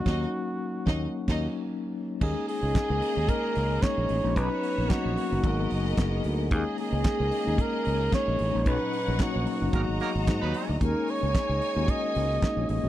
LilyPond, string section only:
\new Staff \with { instrumentName = "String section" } { \time 4/4 \key dis \phrygian \tempo 4 = 112 <dis' dis''>8 r4 <dis' dis''>8 r16 <dis' dis''>8 r4 r16 | <ais gis' dis''>1 | <b fis' cis''>2 <b ais' dis''>2 | <ais gis' dis''>1 |
<dis' cis'' fis''>2 <fis' dis'' ais''>2 | <dis' cis'' gis''>1 | }